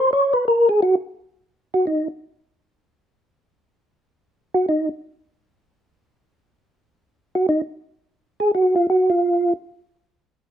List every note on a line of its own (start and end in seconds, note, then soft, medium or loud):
0.00 0.11 C5 loud
0.13 0.33 C#5 loud
0.33 0.45 B4 medium
0.48 0.68 A#4 medium
0.69 0.81 G#4 loud
0.82 0.95 F#4 medium
1.74 1.85 F#4 medium
1.87 2.08 D#4 medium
4.54 4.66 F#4 medium
4.69 4.89 D#4 medium
7.35 7.46 F#4 medium
7.49 7.61 D#4 medium
8.40 8.51 G#4 medium
8.55 8.75 F#4 medium
8.76 8.87 F4 medium
8.90 9.10 F#4 medium
9.10 9.53 F4 medium